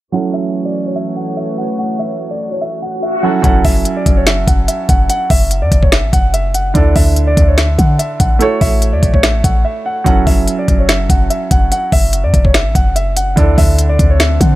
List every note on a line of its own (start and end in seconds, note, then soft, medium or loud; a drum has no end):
0.12 3.41 E3 medium
0.12 3.19 F#3 medium
0.12 3.41 A3 medium
0.12 3.19 C#4 medium
0.12 3.20 E4 medium
0.12 3.41 F#4 medium
0.12 3.20 A4 medium
0.12 3.41 C#5 medium
0.12 0.31 F#5 medium
0.34 0.63 E5 medium
0.65 0.83 D5 medium
0.86 0.95 C#5 medium
0.96 1.14 E5 medium
1.16 1.34 F#5 medium
1.37 1.55 E5 medium
1.58 1.76 F#5 medium
1.78 1.97 F#5 medium
1.78 swell medium
1.99 2.29 E5 medium
2.31 2.49 D5 medium
2.52 2.60 C#5 medium
2.61 2.80 E5 medium
2.82 3.00 F#5 medium
3.03 3.21 E5 medium
3.23 3.41 F#3 medium
3.23 3.42 C#4 soft
3.23 3.43 E4 soft
3.23 3.44 A4 medium
3.23 3.41 F#5 medium
3.42 3.64 F#1 loud
3.42 6.70 F#3 medium
3.42 6.71 C#4 medium
3.42 6.71 E4 medium
3.42 6.72 A4 medium
3.42 3.62 F#5 medium
3.42 kick loud
3.42 closed hi-hat medium
3.65 3.85 F#1 loud
3.65 3.94 E5 medium
3.65 kick loud
3.65 open hi-hat medium
3.85 closed hi-hat medium
3.97 4.15 D5 medium
4.06 4.46 F#1 loud
4.06 kick medium
4.06 closed hi-hat medium
4.17 4.25 C#5 medium
4.27 4.45 E5 medium
4.27 finger snap medium
4.27 snare loud
4.27 closed hi-hat medium
4.47 4.67 F#1 loud
4.47 4.66 F#5 medium
4.47 kick medium
4.47 closed hi-hat medium
4.68 4.86 E5 medium
4.68 closed hi-hat medium
4.89 5.09 F#1 loud
4.89 5.07 F#5 medium
4.89 kick medium
4.89 closed hi-hat medium
5.10 5.28 F#5 medium
5.10 closed hi-hat medium
5.30 5.63 F#1 loud
5.30 5.60 E5 medium
5.30 kick medium
5.30 open hi-hat medium
5.51 closed hi-hat medium
5.62 5.71 F#2 loud
5.62 5.80 D5 medium
5.72 6.05 F#1 loud
5.72 kick medium
5.72 closed hi-hat medium
5.82 5.91 C#5 medium
5.82 kick medium
5.92 6.11 E5 medium
5.92 finger snap medium
5.92 snare loud
5.92 closed hi-hat medium
6.03 6.12 A1 loud
6.13 6.73 F#1 loud
6.13 6.31 F#5 medium
6.13 kick medium
6.13 closed hi-hat medium
6.34 6.52 E5 medium
6.34 closed hi-hat medium
6.54 6.73 F#5 medium
6.54 closed hi-hat medium
6.74 6.95 D2 loud
6.74 8.37 D3 medium
6.74 8.37 D4 medium
6.74 8.38 E4 medium
6.74 8.38 A4 medium
6.74 6.93 D5 medium
6.74 kick loud
6.74 closed hi-hat medium
6.96 7.35 D2 loud
6.96 7.26 E5 medium
6.96 kick loud
6.96 open hi-hat medium
7.16 closed hi-hat medium
7.27 7.46 D5 medium
7.37 7.77 D2 loud
7.37 kick medium
7.37 closed hi-hat medium
7.48 7.57 C#5 medium
7.58 7.76 E5 medium
7.58 finger snap medium
7.58 snare loud
7.58 closed hi-hat medium
7.78 7.98 D3 loud
7.78 7.97 F#5 medium
7.78 kick medium
7.78 closed hi-hat medium
7.99 8.17 E5 medium
7.99 closed hi-hat medium
8.20 8.40 A1 loud
8.20 8.38 F#5 medium
8.20 kick loud
8.20 closed hi-hat medium
8.39 10.02 A3 medium
8.39 10.03 E4 medium
8.39 10.03 F#4 medium
8.39 8.59 A4 medium
8.39 10.04 C#5 medium
8.39 closed hi-hat medium
8.61 8.95 A1 loud
8.61 8.91 E5 medium
8.61 kick loud
8.61 open hi-hat medium
8.82 closed hi-hat medium
8.93 9.02 E2 loud
8.93 9.11 D5 medium
9.03 9.42 A1 loud
9.03 kick medium
9.03 closed hi-hat medium
9.14 9.22 C#5 medium
9.14 kick medium
9.23 9.41 E5 medium
9.23 finger snap medium
9.23 snare loud
9.23 closed hi-hat medium
9.44 9.64 A1 loud
9.44 9.62 F#5 medium
9.44 kick medium
9.44 closed hi-hat medium
9.65 9.83 E5 medium
9.86 10.04 F#5 medium
10.04 10.26 F#1 loud
10.04 13.32 F#3 medium
10.04 13.33 C#4 medium
10.04 13.33 E4 medium
10.04 13.34 A4 medium
10.04 10.24 F#5 medium
10.04 kick loud
10.04 closed hi-hat medium
10.27 10.47 F#1 loud
10.27 10.56 E5 medium
10.27 kick medium
10.27 open hi-hat medium
10.48 closed hi-hat medium
10.59 10.77 D5 medium
10.68 11.08 F#1 loud
10.68 kick medium
10.68 closed hi-hat medium
10.79 10.88 C#5 medium
10.89 11.07 E5 medium
10.89 finger snap medium
10.89 snare loud
10.89 closed hi-hat medium
11.10 11.29 F#1 loud
11.10 11.28 F#5 medium
11.10 kick medium
11.10 closed hi-hat medium
11.30 11.48 E5 medium
11.30 closed hi-hat medium
11.51 11.71 F#1 loud
11.51 11.69 F#5 medium
11.51 kick medium
11.51 closed hi-hat medium
11.72 11.90 F#5 medium
11.72 closed hi-hat medium
11.92 12.25 F#1 loud
11.92 12.22 E5 medium
11.92 kick medium
11.92 open hi-hat medium
12.13 closed hi-hat medium
12.24 12.33 F#2 loud
12.24 12.42 D5 medium
12.34 12.67 F#1 loud
12.34 kick medium
12.34 closed hi-hat medium
12.45 12.53 C#5 medium
12.45 kick medium
12.54 12.73 E5 medium
12.54 finger snap medium
12.54 snare loud
12.54 closed hi-hat medium
12.65 12.75 A1 loud
12.75 13.35 F#1 loud
12.75 12.93 F#5 medium
12.75 kick medium
12.75 closed hi-hat medium
12.96 13.14 E5 medium
12.96 closed hi-hat medium
13.17 13.35 F#5 medium
13.17 closed hi-hat medium
13.36 13.57 D2 loud
13.36 14.55 D3 medium
13.36 14.55 D4 medium
13.36 14.55 E4 medium
13.36 14.55 A4 medium
13.36 13.55 D5 medium
13.36 kick loud
13.36 closed hi-hat medium
13.36 swell medium
13.58 13.98 D2 loud
13.58 13.88 E5 medium
13.58 kick medium
13.58 open hi-hat medium
13.79 closed hi-hat medium
13.89 14.08 D5 medium
13.99 14.39 D2 loud
13.99 kick medium
13.99 closed hi-hat medium
14.10 14.19 C#5 medium
14.20 14.38 E5 medium
14.20 finger snap medium
14.20 snare loud
14.20 closed hi-hat medium
14.40 14.55 D3 loud
14.40 14.55 F#5 medium
14.40 kick medium
14.40 closed hi-hat medium